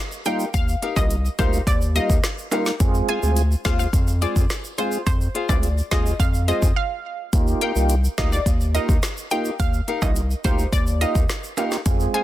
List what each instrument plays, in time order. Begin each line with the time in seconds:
0.12 shaker
0.25 tonewheel organ G3 A#3 D#4 F4, nylon-string guitar D#4 G4 A#4 F5, synth pluck G5, closed hi-hat, shaker
0.40 shaker
0.54 analog synth bass D#2, synth pluck F5, kick, closed hi-hat, shaker
0.68 shaker
0.82 nylon-string guitar D#4 G4 A#4 F5, closed hi-hat
0.96 analog synth bass C2, tonewheel organ G3 A#3 D#4 F4, synth pluck D#5, kick, high timbale, shaker
1.10 closed hi-hat, shaker
1.25 shaker
1.38 analog synth bass D2, tonewheel organ G3 A#3 D#4 F4, nylon-string guitar D#4 G4 A#4 F5, synth pluck C5, kick, closed hi-hat, shaker
1.53 shaker
1.67 analog synth bass D#2, synth pluck D5, kick, closed hi-hat, shaker
1.81 shaker
1.95 tonewheel organ G3 A#3 D#4 F4, nylon-string guitar D#4 G4 A#4 F5, synth pluck D#5, closed hi-hat, shaker
2.10 analog synth bass D#2, kick, shaker
2.24 cross-stick, snare, closed hi-hat, shaker
2.38 shaker
2.51 tonewheel organ G3 A#3 D#4 F4, nylon-string guitar D#4 G4 A#4 F5, closed hi-hat, high timbale, shaker
2.66 snare, shaker
2.80 analog synth bass F2, tonewheel organ G#3 C4 F4 G#4, kick, closed hi-hat, shaker
2.94 shaker
3.08 nylon-string guitar F4 G#4 C5 F5, synth pluck G#5, closed hi-hat
3.22 analog synth bass D2, tonewheel organ G#3 C4 F4 G#4, shaker
3.36 closed hi-hat, shaker
3.52 shaker
3.65 analog synth bass D#2, tonewheel organ G#3 C4 F4 G#4, nylon-string guitar F4 G#4 C5 F5, synth pluck F5, kick, snare, closed hi-hat, shaker
3.79 synth pluck F5, shaker
3.93 analog synth bass F2, kick, closed hi-hat, shaker
4.07 shaker
4.21 tonewheel organ G#3 C4 F4 G#4, nylon-string guitar F4 G#4 C5 F5, synth pluck D5, closed hi-hat, shaker
4.36 analog synth bass F2, kick, shaker
4.50 cross-stick, snare, closed hi-hat, shaker
4.64 shaker
4.78 tonewheel organ G#3 C4 F4 G#4, nylon-string guitar F4 G#4 C5 F5, synth pluck C5, closed hi-hat, shaker
4.92 shaker
5.07 analog synth bass F2, synth pluck C5, kick, closed hi-hat, shaker
5.21 shaker
5.34 nylon-string guitar F4 G#4 C5 F5, closed hi-hat
5.49 analog synth bass D2, tonewheel organ G#3 C4 F4 G#4, synth pluck D5, kick, high timbale, shaker
5.63 closed hi-hat, shaker
5.78 shaker
5.91 analog synth bass D#2, tonewheel organ G#3 C4 F4 G#4, nylon-string guitar F4 G#4 C5 F5, synth pluck D#5, kick, snare, closed hi-hat, shaker
6.06 shaker
6.20 analog synth bass F2, synth pluck F5, kick, closed hi-hat, shaker
6.34 shaker
6.48 tonewheel organ G#3 C4 F4 G#4, nylon-string guitar F4 G#4 C5 F5, synth pluck D#5, closed hi-hat, shaker
6.62 analog synth bass F2, kick, shaker
6.76 synth pluck F5
7.33 analog synth bass D#2, tonewheel organ A#3 D#4 F4 G4, kick, closed hi-hat, shaker
7.47 shaker
7.61 nylon-string guitar D#4 G4 A#4 F5, synth pluck G5, closed hi-hat
7.76 analog synth bass C2, tonewheel organ A#3 D#4 F4 G4, shaker
7.89 closed hi-hat, shaker
8.04 shaker
8.18 analog synth bass D2, tonewheel organ A#3 D#4 F4 G4, nylon-string guitar D#4 G4 A#4 F5, synth pluck D#5, kick, snare, closed hi-hat, shaker
8.32 synth pluck D5, shaker
8.46 analog synth bass D#2, kick, closed hi-hat, shaker
8.61 shaker
8.74 tonewheel organ A#3 D#4 F4 G4, nylon-string guitar D#4 G4 A#4 F5, synth pluck D#5, closed hi-hat, shaker
8.89 analog synth bass D#2, kick, shaker
9.03 cross-stick, snare, closed hi-hat, shaker
9.17 shaker
9.31 tonewheel organ A#3 D#4 F4 G4, nylon-string guitar D#4 G4 A#4 F5, synth pluck G5, closed hi-hat, shaker
9.45 shaker
9.60 analog synth bass D#2, synth pluck F5, kick, closed hi-hat, shaker
9.74 shaker
9.88 nylon-string guitar D#4 G4 A#4 F5, closed hi-hat
10.02 analog synth bass C2, tonewheel organ A#3 D#4 F4 G4, synth pluck D#5, kick, high timbale, shaker
10.16 closed hi-hat, shaker
10.31 shaker
10.44 analog synth bass D2, tonewheel organ A#3 D#4 F4 G4, nylon-string guitar D#4 G4 A#4 F5, synth pluck C5, kick, closed hi-hat, shaker
10.59 shaker
10.72 analog synth bass D#2, synth pluck D5, kick, closed hi-hat, shaker
10.87 shaker
11.01 tonewheel organ A#3 D#4 F4 G4, nylon-string guitar D#4 G4 A#4 F5, synth pluck D#5, closed hi-hat, shaker
11.15 analog synth bass D#2, kick, shaker
11.29 cross-stick, snare, closed hi-hat, shaker
11.44 shaker
11.57 tonewheel organ A#3 D#4 F4 G4, nylon-string guitar D#4 G4 A#4 F5, closed hi-hat, high timbale, shaker
11.71 snare, shaker
11.86 analog synth bass F2, tonewheel organ G#3 C4 F4 G#4, kick, closed hi-hat, shaker
12.00 shaker
12.14 nylon-string guitar F4 G#4 C5 F5, synth pluck G#5, closed hi-hat